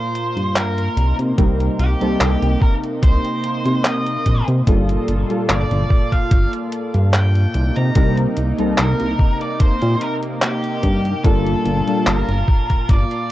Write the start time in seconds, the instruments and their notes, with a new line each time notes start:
Already playing: analog synth pad A#2 F4 A5, lead electric guitar C5
0.15 closed hi-hat
0.37 analog synth bass G2, closed hi-hat
0.56 lead electric guitar A#4, clap, closed hi-hat
0.78 closed hi-hat
0.97 analog synth bass C2, analog synth pad C3 A#3 D#4, closed hi-hat
1.19 analog synth bass C3, closed hi-hat
1.38 analog synth bass C2, synth keys G3 A#3 C4 D#4 A#4, kick, closed hi-hat
1.60 closed hi-hat
1.79 analog synth bass C2, lead electric guitar G4, closed hi-hat
2.00 analog synth bass C2, synth keys G3 A#3 C4 D#4 A4, closed hi-hat
2.20 analog synth bass C2, clap, closed hi-hat
2.42 analog synth bass C2, closed hi-hat
2.61 lead electric guitar A#4, kick
2.84 closed hi-hat
3.02 analog synth bass C2, lead electric guitar C5, kick, closed hi-hat
3.24 closed hi-hat
3.44 closed hi-hat
3.65 analog synth bass C3, closed hi-hat
3.85 lead electric guitar D#5, clap, closed hi-hat
4.07 closed hi-hat
4.26 analog synth bass A#1, kick, closed hi-hat
4.48 analog synth bass C3, closed hi-hat
4.66 analog synth bass G1, analog synth pad A#2 F4 A4, synth keys G3 A#3 D4 F4 A4, kick, closed hi-hat
4.89 closed hi-hat
5.08 analog synth bass G1, closed hi-hat
5.29 synth keys G3 A#3 D4 F4 A4, closed hi-hat
5.49 analog synth bass G1, lead electric guitar D5, clap, closed hi-hat
5.71 analog synth bass G1, closed hi-hat
5.90 kick
6.12 lead electric guitar F5, kick, closed hi-hat
6.31 analog synth bass G1, kick, closed hi-hat
6.53 closed hi-hat
6.72 closed hi-hat
6.94 analog synth bass G2, closed hi-hat
7.14 lead electric guitar G5, clap, closed hi-hat
7.35 closed hi-hat
7.54 analog synth bass C2, analog synth pad C3 A#3 D#4, closed hi-hat
7.76 analog synth bass C3, lead electric guitar A#5, closed hi-hat
7.95 analog synth bass C2, synth keys G3 A#3 C4 D#4 A#4, kick, closed hi-hat
8.17 closed hi-hat
8.37 analog synth bass C2, closed hi-hat
8.58 analog synth bass C2, synth keys G3 A#3 C4 D#4 A4, closed hi-hat
8.78 analog synth bass C2, lead electric guitar A#4, clap, closed hi-hat
9.00 analog synth bass C2, closed hi-hat
9.19 kick
9.41 lead electric guitar D5, closed hi-hat
9.60 lead electric guitar C5, kick, closed hi-hat
9.82 analog synth bass A#2, closed hi-hat
10.01 lead electric guitar A#4, closed hi-hat
10.23 closed hi-hat
10.42 lead electric guitar G4, clap, closed hi-hat
10.64 closed hi-hat
10.83 analog synth bass G2, kick, closed hi-hat
11.05 closed hi-hat
11.24 analog synth bass G1, analog synth pad A#2 F4 A5, synth keys G3 A#3 D4 F4 A4, lead electric guitar A4, kick, closed hi-hat
11.47 closed hi-hat
11.65 analog synth bass G1, closed hi-hat
11.87 synth keys G3 A#3 D4 F4 A4, closed hi-hat
12.06 analog synth bass G1, lead electric guitar A#4, clap, closed hi-hat
12.29 analog synth bass G1, closed hi-hat
12.48 kick
12.70 kick, closed hi-hat
12.89 analog synth bass G1, lead electric guitar D5, kick, closed hi-hat
13.11 closed hi-hat